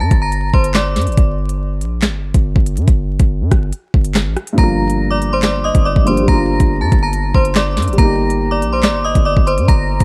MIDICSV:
0, 0, Header, 1, 5, 480
1, 0, Start_track
1, 0, Key_signature, -2, "minor"
1, 0, Tempo, 425532
1, 1325, Time_signature, 4, 2, 24, 8
1, 11327, End_track
2, 0, Start_track
2, 0, Title_t, "Synth bell"
2, 0, Program_c, 0, 98
2, 2, Note_on_c, 0, 81, 76
2, 12, Note_on_c, 0, 93, 61
2, 229, Note_off_c, 0, 81, 0
2, 234, Note_off_c, 0, 93, 0
2, 246, Note_on_c, 0, 82, 84
2, 254, Note_on_c, 0, 94, 66
2, 358, Note_off_c, 0, 82, 0
2, 362, Note_off_c, 0, 94, 0
2, 606, Note_on_c, 0, 84, 81
2, 615, Note_on_c, 0, 72, 68
2, 831, Note_off_c, 0, 84, 0
2, 835, Note_off_c, 0, 72, 0
2, 847, Note_on_c, 0, 86, 79
2, 856, Note_on_c, 0, 74, 71
2, 1297, Note_off_c, 0, 86, 0
2, 1302, Note_off_c, 0, 74, 0
2, 5166, Note_on_c, 0, 82, 95
2, 5175, Note_on_c, 0, 94, 83
2, 5730, Note_off_c, 0, 82, 0
2, 5734, Note_off_c, 0, 94, 0
2, 5758, Note_on_c, 0, 86, 83
2, 5768, Note_on_c, 0, 74, 63
2, 5987, Note_off_c, 0, 86, 0
2, 5992, Note_off_c, 0, 74, 0
2, 6011, Note_on_c, 0, 84, 84
2, 6020, Note_on_c, 0, 72, 60
2, 6121, Note_off_c, 0, 84, 0
2, 6125, Note_off_c, 0, 72, 0
2, 6126, Note_on_c, 0, 86, 75
2, 6135, Note_on_c, 0, 74, 59
2, 6351, Note_off_c, 0, 86, 0
2, 6356, Note_off_c, 0, 74, 0
2, 6365, Note_on_c, 0, 87, 75
2, 6374, Note_on_c, 0, 75, 63
2, 6590, Note_off_c, 0, 87, 0
2, 6595, Note_off_c, 0, 75, 0
2, 6604, Note_on_c, 0, 86, 75
2, 6613, Note_on_c, 0, 74, 58
2, 6830, Note_off_c, 0, 86, 0
2, 6835, Note_off_c, 0, 74, 0
2, 6845, Note_on_c, 0, 84, 81
2, 6854, Note_on_c, 0, 72, 60
2, 7070, Note_off_c, 0, 84, 0
2, 7075, Note_off_c, 0, 72, 0
2, 7084, Note_on_c, 0, 82, 108
2, 7093, Note_on_c, 0, 94, 86
2, 7649, Note_off_c, 0, 82, 0
2, 7653, Note_off_c, 0, 94, 0
2, 7682, Note_on_c, 0, 81, 75
2, 7691, Note_on_c, 0, 93, 58
2, 7909, Note_off_c, 0, 81, 0
2, 7913, Note_off_c, 0, 93, 0
2, 7925, Note_on_c, 0, 82, 82
2, 7935, Note_on_c, 0, 94, 65
2, 8038, Note_off_c, 0, 82, 0
2, 8043, Note_off_c, 0, 94, 0
2, 8286, Note_on_c, 0, 84, 82
2, 8295, Note_on_c, 0, 72, 68
2, 8511, Note_off_c, 0, 84, 0
2, 8515, Note_off_c, 0, 72, 0
2, 8528, Note_on_c, 0, 86, 81
2, 8537, Note_on_c, 0, 74, 70
2, 8978, Note_off_c, 0, 86, 0
2, 8982, Note_off_c, 0, 74, 0
2, 9003, Note_on_c, 0, 82, 106
2, 9012, Note_on_c, 0, 94, 77
2, 9568, Note_off_c, 0, 82, 0
2, 9573, Note_off_c, 0, 94, 0
2, 9600, Note_on_c, 0, 86, 77
2, 9609, Note_on_c, 0, 74, 65
2, 9827, Note_off_c, 0, 86, 0
2, 9832, Note_off_c, 0, 74, 0
2, 9841, Note_on_c, 0, 84, 76
2, 9851, Note_on_c, 0, 72, 59
2, 9956, Note_off_c, 0, 84, 0
2, 9961, Note_off_c, 0, 72, 0
2, 9965, Note_on_c, 0, 86, 95
2, 9974, Note_on_c, 0, 74, 70
2, 10190, Note_off_c, 0, 86, 0
2, 10195, Note_off_c, 0, 74, 0
2, 10202, Note_on_c, 0, 87, 91
2, 10211, Note_on_c, 0, 75, 70
2, 10429, Note_off_c, 0, 87, 0
2, 10434, Note_off_c, 0, 75, 0
2, 10437, Note_on_c, 0, 86, 86
2, 10447, Note_on_c, 0, 74, 67
2, 10666, Note_off_c, 0, 86, 0
2, 10671, Note_off_c, 0, 74, 0
2, 10680, Note_on_c, 0, 84, 75
2, 10689, Note_on_c, 0, 72, 67
2, 10908, Note_off_c, 0, 84, 0
2, 10912, Note_off_c, 0, 72, 0
2, 10921, Note_on_c, 0, 82, 98
2, 10930, Note_on_c, 0, 94, 79
2, 11327, Note_off_c, 0, 82, 0
2, 11327, Note_off_c, 0, 94, 0
2, 11327, End_track
3, 0, Start_track
3, 0, Title_t, "Grand piano"
3, 0, Program_c, 1, 0
3, 5107, Note_on_c, 1, 43, 71
3, 5137, Note_on_c, 1, 53, 57
3, 5167, Note_on_c, 1, 58, 57
3, 5196, Note_on_c, 1, 62, 65
3, 5227, Note_on_c, 1, 65, 83
3, 5406, Control_c, 1, 64, 127
3, 6782, Note_off_c, 1, 43, 0
3, 6797, Note_off_c, 1, 53, 0
3, 6812, Note_off_c, 1, 58, 0
3, 6816, Note_on_c, 1, 43, 51
3, 6827, Note_off_c, 1, 62, 0
3, 6831, Note_on_c, 1, 53, 45
3, 6843, Note_off_c, 1, 65, 0
3, 6846, Note_on_c, 1, 58, 40
3, 6861, Note_on_c, 1, 62, 47
3, 6876, Note_on_c, 1, 67, 49
3, 7023, Note_on_c, 1, 55, 65
3, 7046, Note_off_c, 1, 58, 0
3, 7063, Note_on_c, 1, 58, 59
3, 7071, Note_off_c, 1, 43, 0
3, 7078, Note_off_c, 1, 53, 0
3, 7086, Note_off_c, 1, 62, 0
3, 7100, Note_off_c, 1, 67, 0
3, 7100, Control_c, 1, 64, 0
3, 7103, Note_on_c, 1, 62, 63
3, 7142, Note_on_c, 1, 65, 81
3, 7327, Control_c, 1, 64, 127
3, 8928, Note_off_c, 1, 55, 0
3, 8945, Note_on_c, 1, 55, 71
3, 8955, Note_off_c, 1, 58, 0
3, 8975, Note_off_c, 1, 62, 0
3, 8985, Note_on_c, 1, 58, 65
3, 8996, Note_off_c, 1, 65, 0
3, 9019, Control_c, 1, 64, 0
3, 9024, Note_on_c, 1, 63, 62
3, 9064, Note_on_c, 1, 67, 74
3, 9205, Control_c, 1, 64, 127
3, 11327, Note_off_c, 1, 55, 0
3, 11327, Note_off_c, 1, 58, 0
3, 11327, Note_off_c, 1, 63, 0
3, 11327, Note_off_c, 1, 67, 0
3, 11327, End_track
4, 0, Start_track
4, 0, Title_t, "808-style bass"
4, 0, Program_c, 2, 38
4, 5, Note_on_c, 2, 43, 102
4, 119, Note_off_c, 2, 43, 0
4, 125, Note_on_c, 2, 31, 107
4, 586, Note_off_c, 2, 31, 0
4, 605, Note_on_c, 2, 31, 102
4, 1085, Note_on_c, 2, 43, 103
4, 1102, Note_off_c, 2, 31, 0
4, 1205, Note_on_c, 2, 31, 98
4, 1222, Note_off_c, 2, 43, 0
4, 1319, Note_off_c, 2, 31, 0
4, 1324, Note_on_c, 2, 31, 106
4, 2044, Note_on_c, 2, 34, 103
4, 2061, Note_off_c, 2, 31, 0
4, 2344, Note_on_c, 2, 31, 101
4, 2361, Note_off_c, 2, 34, 0
4, 2630, Note_off_c, 2, 31, 0
4, 2645, Note_on_c, 2, 31, 98
4, 2875, Note_off_c, 2, 31, 0
4, 2885, Note_on_c, 2, 31, 106
4, 3125, Note_on_c, 2, 43, 99
4, 3142, Note_off_c, 2, 31, 0
4, 3239, Note_off_c, 2, 43, 0
4, 3245, Note_on_c, 2, 31, 107
4, 3590, Note_off_c, 2, 31, 0
4, 3605, Note_on_c, 2, 31, 105
4, 3845, Note_on_c, 2, 43, 103
4, 3861, Note_off_c, 2, 31, 0
4, 3959, Note_off_c, 2, 43, 0
4, 3965, Note_on_c, 2, 31, 107
4, 4195, Note_off_c, 2, 31, 0
4, 4445, Note_on_c, 2, 31, 103
4, 4805, Note_on_c, 2, 33, 100
4, 4822, Note_off_c, 2, 31, 0
4, 4919, Note_off_c, 2, 33, 0
4, 5165, Note_on_c, 2, 31, 112
4, 6440, Note_off_c, 2, 31, 0
4, 6485, Note_on_c, 2, 31, 101
4, 6715, Note_off_c, 2, 31, 0
4, 6725, Note_on_c, 2, 31, 108
4, 6965, Note_on_c, 2, 33, 98
4, 6982, Note_off_c, 2, 31, 0
4, 7079, Note_off_c, 2, 33, 0
4, 7085, Note_on_c, 2, 31, 113
4, 7430, Note_off_c, 2, 31, 0
4, 7445, Note_on_c, 2, 31, 106
4, 7684, Note_on_c, 2, 43, 98
4, 7701, Note_off_c, 2, 31, 0
4, 7799, Note_off_c, 2, 43, 0
4, 7805, Note_on_c, 2, 31, 108
4, 8266, Note_off_c, 2, 31, 0
4, 8285, Note_on_c, 2, 31, 103
4, 8765, Note_on_c, 2, 43, 102
4, 8781, Note_off_c, 2, 31, 0
4, 8884, Note_on_c, 2, 31, 96
4, 8901, Note_off_c, 2, 43, 0
4, 8999, Note_off_c, 2, 31, 0
4, 9005, Note_on_c, 2, 31, 104
4, 9724, Note_on_c, 2, 34, 100
4, 9741, Note_off_c, 2, 31, 0
4, 10025, Note_on_c, 2, 31, 98
4, 10042, Note_off_c, 2, 34, 0
4, 10310, Note_off_c, 2, 31, 0
4, 10325, Note_on_c, 2, 31, 102
4, 10555, Note_off_c, 2, 31, 0
4, 10566, Note_on_c, 2, 31, 107
4, 10805, Note_on_c, 2, 43, 96
4, 10822, Note_off_c, 2, 31, 0
4, 10919, Note_off_c, 2, 43, 0
4, 10925, Note_on_c, 2, 31, 115
4, 11271, Note_off_c, 2, 31, 0
4, 11285, Note_on_c, 2, 31, 104
4, 11327, Note_off_c, 2, 31, 0
4, 11327, End_track
5, 0, Start_track
5, 0, Title_t, "Drums"
5, 124, Note_on_c, 9, 42, 70
5, 125, Note_on_c, 9, 36, 94
5, 237, Note_off_c, 9, 36, 0
5, 237, Note_off_c, 9, 42, 0
5, 362, Note_on_c, 9, 42, 81
5, 475, Note_off_c, 9, 42, 0
5, 605, Note_on_c, 9, 36, 89
5, 718, Note_off_c, 9, 36, 0
5, 723, Note_on_c, 9, 42, 86
5, 836, Note_off_c, 9, 42, 0
5, 837, Note_on_c, 9, 39, 98
5, 843, Note_on_c, 9, 38, 118
5, 846, Note_on_c, 9, 42, 86
5, 950, Note_off_c, 9, 39, 0
5, 956, Note_off_c, 9, 38, 0
5, 959, Note_off_c, 9, 42, 0
5, 1084, Note_on_c, 9, 38, 65
5, 1084, Note_on_c, 9, 42, 78
5, 1144, Note_off_c, 9, 42, 0
5, 1144, Note_on_c, 9, 42, 67
5, 1197, Note_off_c, 9, 38, 0
5, 1204, Note_off_c, 9, 42, 0
5, 1204, Note_on_c, 9, 42, 57
5, 1264, Note_off_c, 9, 42, 0
5, 1264, Note_on_c, 9, 42, 47
5, 1324, Note_off_c, 9, 42, 0
5, 1324, Note_on_c, 9, 36, 124
5, 1324, Note_on_c, 9, 42, 81
5, 1437, Note_off_c, 9, 36, 0
5, 1437, Note_off_c, 9, 42, 0
5, 1682, Note_on_c, 9, 42, 81
5, 1795, Note_off_c, 9, 42, 0
5, 2044, Note_on_c, 9, 42, 72
5, 2157, Note_off_c, 9, 42, 0
5, 2278, Note_on_c, 9, 39, 91
5, 2282, Note_on_c, 9, 42, 81
5, 2284, Note_on_c, 9, 38, 115
5, 2391, Note_off_c, 9, 39, 0
5, 2395, Note_off_c, 9, 42, 0
5, 2397, Note_off_c, 9, 38, 0
5, 2644, Note_on_c, 9, 42, 87
5, 2645, Note_on_c, 9, 36, 92
5, 2756, Note_off_c, 9, 42, 0
5, 2758, Note_off_c, 9, 36, 0
5, 2885, Note_on_c, 9, 36, 86
5, 2998, Note_off_c, 9, 36, 0
5, 3005, Note_on_c, 9, 42, 84
5, 3117, Note_off_c, 9, 42, 0
5, 3123, Note_on_c, 9, 42, 66
5, 3236, Note_off_c, 9, 42, 0
5, 3244, Note_on_c, 9, 36, 125
5, 3244, Note_on_c, 9, 42, 81
5, 3357, Note_off_c, 9, 36, 0
5, 3357, Note_off_c, 9, 42, 0
5, 3602, Note_on_c, 9, 42, 81
5, 3605, Note_on_c, 9, 36, 102
5, 3715, Note_off_c, 9, 42, 0
5, 3717, Note_off_c, 9, 36, 0
5, 3964, Note_on_c, 9, 37, 92
5, 3964, Note_on_c, 9, 42, 67
5, 3965, Note_on_c, 9, 36, 93
5, 4076, Note_off_c, 9, 37, 0
5, 4077, Note_off_c, 9, 36, 0
5, 4077, Note_off_c, 9, 42, 0
5, 4202, Note_on_c, 9, 42, 83
5, 4315, Note_off_c, 9, 42, 0
5, 4445, Note_on_c, 9, 36, 89
5, 4558, Note_off_c, 9, 36, 0
5, 4563, Note_on_c, 9, 42, 88
5, 4676, Note_off_c, 9, 42, 0
5, 4678, Note_on_c, 9, 39, 97
5, 4684, Note_on_c, 9, 38, 124
5, 4686, Note_on_c, 9, 42, 83
5, 4791, Note_off_c, 9, 39, 0
5, 4797, Note_off_c, 9, 38, 0
5, 4799, Note_off_c, 9, 42, 0
5, 4924, Note_on_c, 9, 37, 91
5, 4925, Note_on_c, 9, 42, 46
5, 5037, Note_off_c, 9, 37, 0
5, 5037, Note_off_c, 9, 42, 0
5, 5044, Note_on_c, 9, 42, 82
5, 5157, Note_off_c, 9, 42, 0
5, 5164, Note_on_c, 9, 42, 82
5, 5165, Note_on_c, 9, 36, 124
5, 5277, Note_off_c, 9, 36, 0
5, 5277, Note_off_c, 9, 42, 0
5, 5523, Note_on_c, 9, 42, 78
5, 5635, Note_off_c, 9, 42, 0
5, 5885, Note_on_c, 9, 42, 67
5, 5997, Note_off_c, 9, 42, 0
5, 6118, Note_on_c, 9, 39, 92
5, 6122, Note_on_c, 9, 42, 81
5, 6124, Note_on_c, 9, 38, 119
5, 6231, Note_off_c, 9, 39, 0
5, 6235, Note_off_c, 9, 42, 0
5, 6237, Note_off_c, 9, 38, 0
5, 6483, Note_on_c, 9, 42, 82
5, 6485, Note_on_c, 9, 36, 96
5, 6596, Note_off_c, 9, 42, 0
5, 6597, Note_off_c, 9, 36, 0
5, 6725, Note_on_c, 9, 36, 87
5, 6838, Note_off_c, 9, 36, 0
5, 6844, Note_on_c, 9, 42, 84
5, 6957, Note_off_c, 9, 42, 0
5, 6963, Note_on_c, 9, 42, 65
5, 7076, Note_off_c, 9, 42, 0
5, 7084, Note_on_c, 9, 42, 82
5, 7085, Note_on_c, 9, 36, 126
5, 7197, Note_off_c, 9, 42, 0
5, 7198, Note_off_c, 9, 36, 0
5, 7443, Note_on_c, 9, 42, 79
5, 7445, Note_on_c, 9, 36, 100
5, 7556, Note_off_c, 9, 42, 0
5, 7558, Note_off_c, 9, 36, 0
5, 7805, Note_on_c, 9, 36, 95
5, 7805, Note_on_c, 9, 42, 73
5, 7918, Note_off_c, 9, 36, 0
5, 7918, Note_off_c, 9, 42, 0
5, 8042, Note_on_c, 9, 42, 84
5, 8155, Note_off_c, 9, 42, 0
5, 8285, Note_on_c, 9, 36, 87
5, 8398, Note_off_c, 9, 36, 0
5, 8404, Note_on_c, 9, 42, 86
5, 8517, Note_off_c, 9, 42, 0
5, 8518, Note_on_c, 9, 39, 99
5, 8524, Note_on_c, 9, 38, 121
5, 8527, Note_on_c, 9, 42, 86
5, 8631, Note_off_c, 9, 39, 0
5, 8637, Note_off_c, 9, 38, 0
5, 8639, Note_off_c, 9, 42, 0
5, 8764, Note_on_c, 9, 38, 66
5, 8765, Note_on_c, 9, 42, 79
5, 8825, Note_off_c, 9, 42, 0
5, 8825, Note_on_c, 9, 42, 68
5, 8877, Note_off_c, 9, 38, 0
5, 8885, Note_off_c, 9, 42, 0
5, 8885, Note_on_c, 9, 42, 60
5, 8945, Note_off_c, 9, 42, 0
5, 8945, Note_on_c, 9, 42, 47
5, 9004, Note_off_c, 9, 42, 0
5, 9004, Note_on_c, 9, 42, 80
5, 9005, Note_on_c, 9, 36, 126
5, 9117, Note_off_c, 9, 42, 0
5, 9118, Note_off_c, 9, 36, 0
5, 9363, Note_on_c, 9, 42, 84
5, 9476, Note_off_c, 9, 42, 0
5, 9725, Note_on_c, 9, 42, 72
5, 9838, Note_off_c, 9, 42, 0
5, 9958, Note_on_c, 9, 39, 93
5, 9963, Note_on_c, 9, 42, 83
5, 9965, Note_on_c, 9, 38, 121
5, 10071, Note_off_c, 9, 39, 0
5, 10075, Note_off_c, 9, 42, 0
5, 10077, Note_off_c, 9, 38, 0
5, 10324, Note_on_c, 9, 42, 86
5, 10325, Note_on_c, 9, 36, 93
5, 10436, Note_off_c, 9, 42, 0
5, 10438, Note_off_c, 9, 36, 0
5, 10565, Note_on_c, 9, 36, 86
5, 10678, Note_off_c, 9, 36, 0
5, 10685, Note_on_c, 9, 42, 81
5, 10798, Note_off_c, 9, 42, 0
5, 10804, Note_on_c, 9, 42, 65
5, 10917, Note_off_c, 9, 42, 0
5, 10925, Note_on_c, 9, 36, 126
5, 10925, Note_on_c, 9, 42, 82
5, 11038, Note_off_c, 9, 36, 0
5, 11038, Note_off_c, 9, 42, 0
5, 11283, Note_on_c, 9, 42, 81
5, 11285, Note_on_c, 9, 36, 99
5, 11327, Note_off_c, 9, 36, 0
5, 11327, Note_off_c, 9, 42, 0
5, 11327, End_track
0, 0, End_of_file